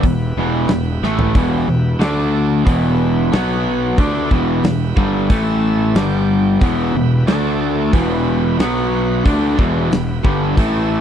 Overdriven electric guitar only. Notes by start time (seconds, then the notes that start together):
0.05 E2 B2
0.38 E2 B2 E3
0.72 E2 B2
1.03 A2 E3 A3
1.35 E2 B2 E3
1.68 E2 B2
1.99 D3 A3 D4
2.64 E2 B2 E3
3.32 B2 F#3 B3
3.98 D3 A3 D4
4.31 E2 B2 E3
4.65 E2 B2
4.97 G2 D3 G3
5.30 A2 E3 A3
5.96 G2 D3 G3
6.61 E2 B2 E3
6.96 E2 B2
7.28 D3 A3 D4
7.93 E2 B2 E3
8.60 B2 F#3 B3
9.24 D3 A3 D4
9.58 E2 B2 E3
9.91 E2 B2
10.24 G2 D3 G3
10.57 A2 E3 A3